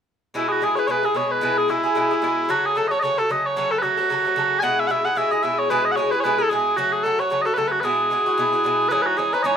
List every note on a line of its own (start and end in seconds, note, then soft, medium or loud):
0.34 0.59 B2 medium
0.34 0.60 G#3 medium
0.34 0.61 E4 medium
0.34 0.49 E4 medium
0.34 0.62 G#4 medium
0.48 0.64 F#4 medium
0.48 0.52 G#4 medium
0.61 0.77 B2 soft
0.61 0.77 G#3 medium
0.61 0.77 E4 medium
0.61 0.75 G#4 medium
0.61 0.76 G#4 medium
0.76 0.87 G#3 soft
0.76 0.88 E4 soft
0.76 0.88 G#4 soft
0.76 0.87 B4 medium
0.76 0.79 C#5 medium
0.87 1.03 B2 medium
0.87 1.04 G#3 medium
0.87 1.03 E4 medium
0.87 1.02 G#4 medium
0.87 1.05 B4 medium
0.87 0.91 C#5 medium
1.03 1.15 G#3 soft
1.03 1.15 E4 soft
1.03 1.15 G#4 medium
1.03 1.17 G#4 medium
1.14 1.40 B2 medium
1.14 1.41 G#3 medium
1.14 1.41 E4 medium
1.14 1.42 G#4 medium
1.14 1.27 C#5 medium
1.27 1.31 C#5 medium
1.31 1.42 B4 medium
1.41 1.67 B2 medium
1.41 1.68 G#3 medium
1.41 1.69 E4 medium
1.41 1.70 G#4 medium
1.41 1.58 B4 medium
1.58 1.70 G#4 medium
1.68 1.84 B2 medium
1.68 1.85 G#3 medium
1.68 1.84 E4 medium
1.68 2.50 E4 medium
1.68 1.82 G#4 medium
1.84 1.95 G#3 soft
1.84 1.95 E4 soft
1.84 1.95 G#4 medium
1.95 2.11 B2 medium
1.95 2.11 G#3 medium
1.95 2.11 E4 medium
1.95 2.10 G#4 medium
2.11 2.21 G#3 soft
2.11 2.22 E4 soft
2.11 2.23 G#4 medium
2.22 2.48 B2 medium
2.22 2.49 G#3 medium
2.22 2.50 E4 medium
2.22 2.50 G#4 medium
2.49 2.74 C#3 medium
2.49 2.75 F#3 medium
2.49 2.76 A3 medium
2.49 2.66 F#4 medium
2.49 2.77 A4 medium
2.66 2.77 G#4 medium
2.75 2.91 C#3 medium
2.75 2.92 F#3 medium
2.75 2.92 A3 medium
2.75 2.88 A4 medium
2.75 2.90 A4 medium
2.88 3.03 A4 medium
2.88 2.99 C#5 medium
2.88 2.91 D#5 medium
2.93 3.02 F#3 soft
2.93 3.03 A3 soft
2.99 3.18 C#3 medium
2.99 3.18 C#5 loud
2.99 3.03 D#5 loud
3.04 3.19 F#3 medium
3.04 3.18 A3 medium
3.04 3.17 A4 medium
3.18 3.29 F#3 soft
3.18 3.30 A3 soft
3.18 3.30 A4 soft
3.18 3.31 A4 medium
3.29 3.55 C#3 medium
3.29 3.56 F#3 medium
3.29 3.57 A3 medium
3.29 3.57 A4 medium
3.29 3.46 D#5 medium
3.46 3.57 C#5 medium
3.56 3.81 C#3 medium
3.56 3.82 F#3 medium
3.56 3.83 A3 medium
3.56 3.84 A4 medium
3.56 3.71 C#5 loud
3.71 3.78 A4 medium
3.78 3.82 B4 medium
3.82 3.98 C#3 medium
3.82 3.99 F#3 medium
3.82 3.97 A3 medium
3.82 4.60 F#4 medium
3.82 3.96 A4 medium
3.97 4.09 F#3 soft
3.97 4.10 A3 soft
3.97 4.09 A4 medium
4.10 4.25 C#3 medium
4.10 4.26 F#3 medium
4.10 4.25 A3 medium
4.10 4.24 A4 medium
4.25 4.36 F#3 soft
4.25 4.37 A3 soft
4.25 4.37 A4 medium
4.36 4.62 C#3 medium
4.36 4.62 F#3 medium
4.36 4.63 A3 medium
4.36 4.63 A4 medium
4.60 4.88 B2 medium
4.60 4.89 G#3 medium
4.60 4.89 E4 medium
4.60 4.80 F#5 loud
4.60 4.63 G#5 loud
4.64 4.90 G#4 medium
4.80 4.87 E5 medium
4.87 5.05 B2 medium
4.87 5.05 G#3 medium
4.87 5.05 E4 medium
4.87 5.05 E5 medium
4.87 4.91 F#5 medium
4.92 5.03 G#4 medium
5.05 5.15 G#3 soft
5.05 5.16 E4 soft
5.05 5.16 G#4 soft
5.05 5.14 F#5 medium
5.14 5.32 B2 medium
5.14 5.32 G#3 medium
5.14 5.31 E4 medium
5.14 5.30 G#4 medium
5.14 5.31 E5 loud
5.14 5.16 F#5 medium
5.31 5.42 G#3 soft
5.31 5.43 E4 medium
5.31 5.43 G#4 medium
5.31 5.43 D#5 medium
5.43 5.69 B2 soft
5.43 5.69 G#3 medium
5.43 5.70 E4 medium
5.43 5.70 G#4 medium
5.43 5.59 E5 medium
5.59 5.70 C#5 medium
5.70 5.96 B2 medium
5.70 5.96 G#3 medium
5.70 5.97 E4 medium
5.70 5.98 G#4 medium
5.70 5.85 B4 loud
5.85 5.92 D#5 medium
5.92 5.96 F#5 medium
5.96 6.12 B2 medium
5.96 6.13 G#3 medium
5.96 6.12 E4 medium
5.96 6.11 G#4 medium
5.96 6.11 C#5 medium
6.11 6.24 G#3 soft
6.11 6.24 E4 soft
6.11 6.24 G#4 medium
6.11 6.20 B4 medium
6.20 6.39 B2 medium
6.20 6.39 B4 medium
6.20 6.24 C#5 medium
6.25 6.40 G#3 medium
6.25 6.39 E4 medium
6.25 6.37 G#4 medium
6.38 6.50 G#3 soft
6.38 6.51 E4 soft
6.38 6.50 G#4 medium
6.38 6.50 A4 medium
6.50 6.77 B2 medium
6.50 6.77 G#3 medium
6.50 6.78 E4 medium
6.50 6.77 G#4 medium
6.50 6.78 G#4 medium
6.77 7.03 C#3 medium
6.77 7.04 F#3 medium
6.77 7.04 A3 medium
6.77 6.92 F#4 medium
6.77 7.05 F#4 medium
6.92 7.03 G#4 medium
7.03 7.19 C#3 soft
7.03 7.20 F#3 medium
7.03 7.19 A3 medium
7.03 7.17 F#4 medium
7.03 7.20 A4 medium
7.19 7.30 F#3 soft
7.19 7.31 A3 soft
7.19 7.30 F#4 medium
7.19 7.30 C#5 medium
7.30 7.46 C#3 medium
7.30 7.46 F#3 medium
7.30 7.45 A3 medium
7.30 7.44 F#4 medium
7.30 7.42 C#5 loud
7.42 7.57 F#4 soft
7.42 7.46 D#5 medium
7.46 7.56 F#3 soft
7.46 7.57 A3 soft
7.46 7.54 A4 medium
7.54 7.83 C#3 medium
7.54 7.84 F#3 medium
7.54 7.68 A4 medium
7.54 7.58 B4 medium
7.58 7.84 A3 medium
7.58 7.84 F#4 medium
7.68 7.72 B4 medium
7.72 7.80 F#4 medium
7.80 8.09 B2 medium
7.80 8.10 G#3 medium
7.80 8.11 E4 medium
7.80 8.89 G#4 medium
7.80 7.84 B4 medium
7.85 8.11 F#4 medium
8.10 8.26 B2 soft
8.10 8.26 G#3 medium
8.10 8.26 E4 medium
8.10 8.25 F#4 medium
8.26 8.37 G#3 soft
8.26 8.38 E4 soft
8.26 8.38 F#4 medium
8.38 8.53 B2 medium
8.38 8.53 G#3 medium
8.38 8.52 E4 medium
8.38 8.51 F#4 medium
8.52 8.64 G#3 soft
8.52 8.65 E4 soft
8.52 8.64 F#4 soft
8.64 8.90 B2 medium
8.64 8.91 G#3 medium
8.64 8.92 E4 medium
8.64 8.92 F#4 medium
8.89 9.16 G#2 medium
8.89 9.17 E3 medium
8.89 9.18 C#4 medium
8.89 9.19 D#4 medium
8.89 9.02 G#4 loud
8.89 8.92 B4 loud
9.02 9.06 B4 medium
9.06 9.18 F#4 medium
9.17 9.33 G#2 medium
9.17 9.33 E3 medium
9.17 9.33 C#4 medium
9.17 9.32 D#4 medium
9.17 9.33 G#4 medium
9.33 9.43 E3 soft
9.33 9.44 C#4 medium
9.33 9.44 D#4 soft
9.33 9.43 B4 medium
9.43 9.57 G#2 medium
9.43 9.57 E3 medium
9.43 9.57 C#4 medium
9.43 9.57 D#4 medium
9.43 9.56 C#5 medium
9.43 9.46 D#5 medium